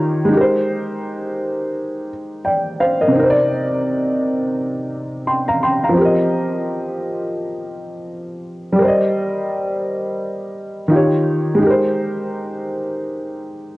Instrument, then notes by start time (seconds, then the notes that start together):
upright piano
Already playing: D#3 D#4 F4 G4 C#5 F5 A#5
0.25 G#3 D#4
0.33 G4 A#4
0.41 C5
2.45 D5 G5
2.80 C5 F5
3.01 A#4 D#5
3.08 C3 C4
3.15 D#4 A#4
3.24 C5
3.30 D5
5.27 G5 C6
5.48 F5 A#5
5.63 G5 C6
5.84 F5 A#5
5.89 F3
5.94 C4 G4
6.01 A#4 D#5
8.72 G3 G4
8.79 A#4 C5
8.85 D5 D#5
10.88 D#3 D#4 F4
10.94 G4 C#5
11.55 G#3 D#4
11.63 G4 A#4
11.71 C5